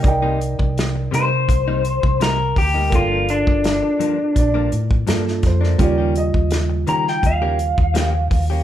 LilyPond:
<<
  \new Staff \with { instrumentName = "Upright piano" } { \time 4/4 \key g \minor \tempo 4 = 83 <ees'' g''>4~ <ees'' g''>16 r2 r8. | r2 d''4. c''8 | d''8 ees''8. r2 r8. | }
  \new Staff \with { instrumentName = "Clean electric guitar" } { \time 4/4 \key g \minor r4. c''4. bes'8 g'8 | f'8 d'2 r4. | r4. bes''16 g''16 f''2 | }
  \new Staff \with { instrumentName = "Reed electric piano" } { \time 4/4 \key g \minor <ees' bes' d''>1 | <f' a' bes'>2. <bes f' a'>4 | <des g f'>1 | }
  \new Staff \with { instrumentName = "Clean electric guitar" } { \time 4/4 \key g \minor r16 <c g bes ees'>16 r4 <c g bes ees'>16 r8 <c g bes ees'>16 r8 <c g bes ees'>16 r8 <g bes ees'>16 | <g, f bes d'>16 <g, f bes d'>16 r4 <g, f bes d'>16 r8 <g, f bes d'>16 r8 <g, f bes d'>16 r8 <f bes d'>16 | <ees bes des' g'>16 <ees bes des' g'>16 r4 <ees bes des' g'>16 r8 <ees bes des' g'>16 r8 <ees bes des' g'>16 r8 <bes des' g'>16 | }
  \new Staff \with { instrumentName = "Fingered electric bass" } { \clef bass \time 4/4 \key g \minor c,8. c,8. c8 c,8. c,8. d,8 | g,,8. g,,8 r8. bes,,8 a,8 g,8 f,8 | ees,8. ees,8. ees8 ees,8. ees,8. ees,8 | }
  \new DrumStaff \with { instrumentName = "Drums" } \drummode { \time 4/4 <hh bd>8 hh16 bd16 <hh sn>8 hh8 <hh bd>8 hh16 bd16 <hh sn>8 <hho bd>8 | <hh bd>8 hh16 bd16 <hh sn>8 hh8 <hh bd>8 hh16 bd16 <hh sn>16 sn16 <hh bd sn>16 sn16 | <hh bd>8 hh16 bd16 <hh sn>8 hh16 sn16 <hh bd>8 hh16 bd16 <hh sn>8 <hho bd>8 | }
>>